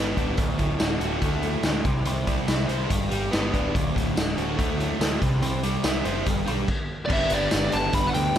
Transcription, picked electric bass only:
Already playing: G1
0.17 D1
0.38 D1
0.59 D1
0.80 D1
1.00 D1
1.22 D2
1.64 D2
1.85 C2
2.07 C2
2.48 C2
2.69 C2
2.90 G1
3.12 G1
3.33 G1
3.54 D1
3.75 D1
3.96 D1
4.18 D1
4.38 D1
4.59 D2
5.00 D2
5.22 C2
5.42 C2
5.85 C2
6.05 F#1
6.27 G1
6.48 B1
7.10 G1
7.31 G1
7.53 G1
7.74 G1
7.93 G1
8.15 D2

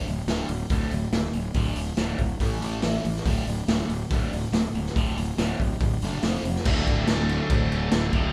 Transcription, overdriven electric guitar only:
0.06 D2 A2
0.28 D2 A2 D3
0.49 D2 A2
0.70 D2 A2 D3
0.92 D2 A2
1.14 D2 A2
1.33 D2 A2
1.56 D2 A2 D3
1.77 D2 A2
1.97 D2 A2 D3
2.19 D2 A2
2.41 A2 E3 A3
2.61 A2 E3 A3
2.82 A2 E3 A3
3.04 A2 E3
3.25 D2 A2 D3
3.46 D2 A2
3.67 D2 A2 D3
3.91 D2 A2
4.11 D2 A2 D3
4.32 D2 A2
4.52 D2 A2
4.75 D2 A2
4.95 D2 A2 D3
5.17 D2 A2
5.38 D2 A2 D3
5.60 D2 A2
5.82 D2 A2
6.02 D2 A2 D3
6.23 F2 C3 F3
6.45 F2 C3
6.65 D2 A2 D3
8.13 A2 D3
8.17 D2

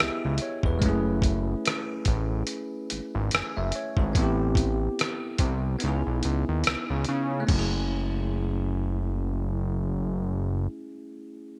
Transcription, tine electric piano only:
Already playing: B3 E4 G4 G#4 D#5
0.00 E5
0.42 C#5
0.66 B4
0.79 G#3 C#4
0.85 A3 E4 G#4
3.34 G#5
3.57 E5
3.75 C#5
3.99 A4
4.13 B3 C4
4.19 E4 G4
5.78 B3 D#4
5.85 E4 G#4
7.40 A3
7.47 C#4
7.53 E4
7.59 G#4

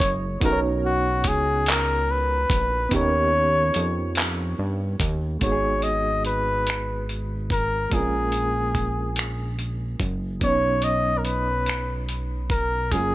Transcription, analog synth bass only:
0.00 F#1
0.42 B1
1.25 C#2
2.50 A#1
2.92 D#2
3.76 F2
4.59 G2
5.00 D#2
5.42 G#1
7.92 A#1
10.00 F#1
10.42 B1
12.92 F#1

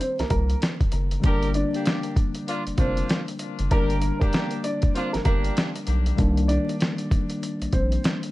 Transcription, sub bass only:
0.19 C2
0.31 C2
0.93 F#1
1.24 G1
2.67 F1
2.78 F1
3.59 F#1
3.71 G1
5.14 G1
5.25 G1
5.88 B1
6.19 C2
7.61 A#1
7.73 A#1

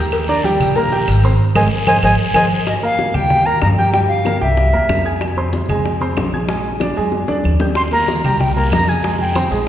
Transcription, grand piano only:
Already playing: G4 G5
0.00 G6
0.29 D4 D5 D6
0.45 G3 G4 G5
0.77 A#3 A#4 A#5
0.92 G4 G5 G6
1.25 C4 C5 C6
1.55 G#4 C5 D#5
1.88 G#4 C5 D#5
2.04 G#4 C5 D#5
2.36 G#4 C5 D#5
2.83 A#3 A#4 A#5
3.14 G3 G4 G5
3.47 A#3 A#4 A#5
3.78 G4 G5 G6
3.94 G3 G4 G5
4.26 A#3 A#4 A#5
4.41 G3 G4 G5
4.73 A#3 A#4 A#5
5.05 G#4 G#5 G#6
5.37 C4 C5 C6
5.69 G#3 G#4 G#5
6.01 C4 C5 C6
6.33 G#4 G#5 G#6
6.49 G#3 G#4 G#5
6.81 D4 D5 D6
6.97 G#3 G#4 G#5
7.28 D4 D5 D6
7.60 G4 G5 G6
7.92 A#3 A#4 A#5
8.24 G3 G4 G5
8.57 A#3 A#4 A#5
8.88 G#4 G#5 G#6
9.04 G#3 G#4 G#5
9.35 C4 C5 C6
9.51 G#3 G#4 G#5

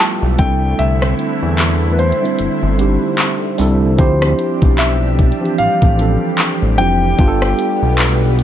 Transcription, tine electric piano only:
Already playing: G3 B3 E4 F4 G4 A4
0.38 G3 C4 D4 E4 A4
2.21 G3 C4 D4 E4 C5
2.78 G3 C4 D4 D#4 G4
2.87 E4
3.58 G3 C4 D4 E4 A4
3.98 F3 C4 D4 E4 G4
5.41 E3 F3 C4 D4 G4
5.98 E3 F3 C4 D4 A4
6.78 F3 C4 D4 E4 G4
7.18 G3 B3 D4 F4 G4
7.28 A4

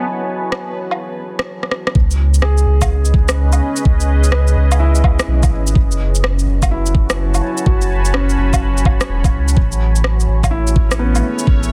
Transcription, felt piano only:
Already playing: B4 D#5
2.42 G#4
4.33 B4
4.80 E4
6.71 E4
7.66 F#4
8.15 C#4
10.51 E4
10.99 B3

